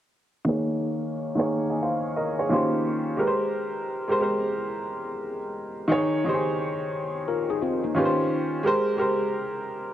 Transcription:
0.45 upright piano D#3 A#3 G#4
0.49 upright piano C#5
1.35 upright piano D#3 A#3 G#4 C#5
1.70 upright piano D#5 G#5
1.82 upright piano C5 F5
2.16 upright piano A#4 D#5
2.39 upright piano G#4 C#5
2.49 upright piano D#3 A#3 C#4 F4 G4
2.54 upright piano C5
3.17 upright piano G#3 G4 A#4
3.21 upright piano B4
3.27 upright piano C5
4.08 upright piano G#3 G4 A#4 C5
4.19 upright piano G#3 G4 A#4 C5
5.88 upright piano D#3 D#4 G#4
5.92 upright piano C#5
6.25 upright piano D#3 D#4 G4
6.29 upright piano C5
6.34 upright piano G#4
7.28 tine electric piano F4 A#4
7.50 tine electric piano D#4 G#4
7.62 tine electric piano C4 F4
7.84 tine electric piano A#3 D#4
7.95 upright piano D#3 C#4 F4 G4 B4
8.05 upright piano C5
8.63 upright piano G#3 G4 A#4 C5
8.97 upright piano G#3 G4 A#4
9.01 upright piano C5

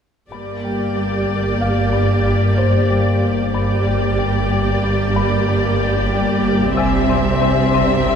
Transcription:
0.32 double bass section G1, synth drone G1, marimba G2, cello section G2, viola section A#3 G4, violin section D5
0.65 marimba G3
0.97 marimba G3
1.29 marimba G3
1.61 marimba G2, grand piano F5
1.93 marimba G2
2.26 marimba G2
2.58 marimba G2, grand piano C5
2.90 marimba G3
3.23 marimba G3
3.54 synth drone G1, double bass section G1, marimba G2, cello section G2, viola section A#3 G4, violin section D5
3.87 marimba G3
4.19 marimba G3
4.51 marimba G3
4.84 marimba G2
5.16 marimba G2
5.49 marimba G2
5.81 marimba G2
6.13 marimba G3
6.45 marimba G3
6.77 synth drone G1, double bass section C2, marimba C3, cello section C3, viola section G3 C4, violin section E5, grand piano G#5
7.09 marimba C4
7.42 marimba C4
7.74 marimba C4
8.07 marimba C3

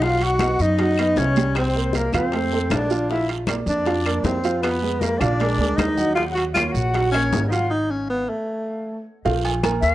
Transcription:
Already playing: upright bass B1
0.01 upright piano F#3 F#4 F#5, tenor saxophone F4, flute F5, high bongo, high conga, long guiro
0.21 tenor saxophone F#4, flute F#5, high conga, high timbale
0.39 upright piano B3 B4 D#5, high bongo, high conga, high timbale, low timbale, short guiro, claves
0.59 upright bass F#2, tenor saxophone D#4, flute D#5, high conga, short guiro
0.78 upright piano F#3 F#4 F#5, high bongo, high conga, high timbale, long guiro
0.97 upright piano B3 B4 D#5, high conga, high timbale, claves
1.16 upright bass C2, tenor saxophone C#4, flute C#5, high bongo, low bongo, high conga, low timbale, short guiro
1.36 upright piano G3 G4 G5, high conga, high timbale, short guiro
1.55 tenor saxophone C4, flute C5, high bongo, high conga, high timbale, long guiro, claves
1.74 upright piano A#3 A#4 C5, high bongo, high conga
1.93 tenor saxophone A#3, flute A#4, high bongo, high conga, high timbale, low timbale, short guiro
2.12 upright bass F2, upright piano F3 F4 F5, tenor saxophone C4, flute C5, high conga, low conga, high timbale, short guiro, claves
2.31 upright piano A3 A4 C5, high bongo, high conga, high timbale, long guiro
2.51 upright piano A3 A4 C5, high bongo, high conga
2.70 upright bass A#1, tenor saxophone D4, flute D5, high bongo, low bongo, high conga, high timbale, low timbale, short guiro, claves
2.90 upright piano F3 F4 F5, high bongo, short guiro
3.09 upright piano F3 F4 F5, tenor saxophone E4, flute E5, high bongo, high conga, long guiro
3.28 high conga, high timbale
3.47 upright piano A#3 A#4 D5, high bongo, high conga, high timbale, low timbale, short guiro, claves
3.66 upright bass F2, tenor saxophone D4, flute D5, high conga, short guiro
3.85 upright piano F3 F4 F5, high bongo, high conga, high timbale, long guiro
4.05 upright piano A#3 A#4 D5, high conga, high timbale, claves
4.23 upright bass F2, tenor saxophone C4, flute C5, high bongo, low bongo, high conga, low timbale, short guiro
4.44 upright piano F3 F4 F5, high conga, high timbale, short guiro
4.60 tenor saxophone B3, flute B4, high bongo, high conga, long guiro, claves
4.64 high timbale
4.82 upright piano G#3 G#4 B4, high bongo, high conga
4.99 tenor saxophone A#3, flute A#4, high bongo, high conga, high timbale, low timbale, short guiro
5.17 upright bass A#1, upright piano F3, tenor saxophone D4, flute D5, high conga, low conga, high timbale, short guiro, claves
5.22 upright piano F4 F5
5.40 upright piano G#3 G#4 A#4, high bongo, high conga, high timbale, long guiro
5.58 upright bass D2, upright piano G#3 G#4 A#4, high bongo, high conga
5.77 upright bass D#2, tenor saxophone D#4, flute D#5, high bongo, low bongo, high conga, high timbale, low timbale, short guiro, claves
5.97 upright piano F#3 F#4 F#5, high bongo, high conga, short guiro
6.14 upright piano F#3 F#4 F#5, tenor saxophone F4, flute F5, high bongo, high conga, long guiro
6.31 tenor saxophone F#4, flute F#5
6.36 high conga, high timbale
6.53 upright piano A#3 A#4, tenor saxophone F4, flute F5, high bongo, high conga, short guiro, claves
6.57 upright piano C#5, high timbale, low timbale
6.67 tenor saxophone F4, flute F5
6.72 upright bass A#1, tenor saxophone F#4, flute F#5, high conga, short guiro
6.94 upright piano F#3 F#4 F#5, high bongo, high conga, high timbale, long guiro
7.11 upright piano A#3 A#4 C#5, tenor saxophone C#4, flute C#5, high conga, high timbale, claves
7.32 upright bass G#1, high bongo, low bongo, high conga, low timbale, short guiro
7.47 upright piano F#3 F#4, tenor saxophone D#4 F4, flute D#5 F5
7.52 upright piano F#5, high conga, high timbale, short guiro
7.70 tenor saxophone D#4
7.90 tenor saxophone C#4
8.10 tenor saxophone B3
8.29 tenor saxophone A3
9.25 upright bass A#1, upright piano F3 F4 F5, cowbell, high conga, long guiro
9.44 cowbell, high conga, low agogo
9.63 upright piano A#3 A#4 A#5, cowbell, high conga, low timbale, low agogo, short guiro, claves
9.81 upright bass D#2, flute F5, cowbell, high conga, short guiro

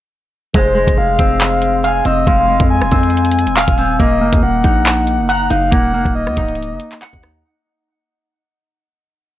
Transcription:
0.54 808-style bass F1, clean electric guitar G#3, soft synth lead C5, kick, closed hi-hat
0.75 clean electric guitar G#3
0.87 808-style bass F1, kick, closed hi-hat
0.97 808-style bass F1, soft synth lead F5
1.19 808-style bass F1, clean electric guitar C4, kick, closed hi-hat
1.41 clap, closed hi-hat
1.62 closed hi-hat
1.84 clean electric guitar F5, soft synth lead G#5, closed hi-hat
2.05 808-style bass F1, clean electric guitar C4, soft synth lead D#5, closed hi-hat
2.27 808-style bass F1, clean electric guitar G#3, soft synth lead F5, kick, closed hi-hat
2.48 clean electric guitar G#3
2.60 808-style bass F2, kick
2.70 soft synth lead G#5
2.82 808-style bass D#1, cross-stick
2.91 808-style bass F2, clean electric guitar C4, kick, closed hi-hat
3.03 closed hi-hat
3.10 closed hi-hat
3.17 closed hi-hat
3.25 closed hi-hat
3.32 closed hi-hat
3.39 closed hi-hat
3.46 808-style bass D#1, closed hi-hat
3.57 clean electric guitar F5, clap
3.68 808-style bass D#1, kick, closed hi-hat
3.78 clean electric guitar C4, open hi-hat
3.99 808-style bass D#1, clean electric guitar A#3, soft synth lead D#5, kick, closed hi-hat
4.21 808-style bass F#1, clean electric guitar A#3
4.33 808-style bass D#2, kick, closed hi-hat
4.43 808-style bass D#1, soft synth lead F#5
4.64 808-style bass A#1, clean electric guitar D#4, kick, closed hi-hat
4.86 clap, closed hi-hat
5.07 closed hi-hat
5.19 808-style bass F#1
5.29 clean electric guitar F#5, soft synth lead A#5, closed hi-hat
5.50 808-style bass F#1, clean electric guitar D#4, soft synth lead F5, closed hi-hat
5.72 808-style bass D#1, clean electric guitar A#3, soft synth lead F#5, kick, closed hi-hat
5.94 808-style bass F1, clean electric guitar A#3
6.05 808-style bass D#1, kick
6.15 soft synth lead D#5
6.27 808-style bass D#2, cross-stick
6.37 808-style bass C#1, clean electric guitar D#4, kick, closed hi-hat
6.49 closed hi-hat
6.55 closed hi-hat
6.63 closed hi-hat
6.70 808-style bass F#1
6.80 closed hi-hat
6.92 clap, closed hi-hat
7.02 clean electric guitar F#5, clap
7.13 808-style bass D#2, kick, closed hi-hat
7.23 clean electric guitar D#4, cross-stick, closed hi-hat

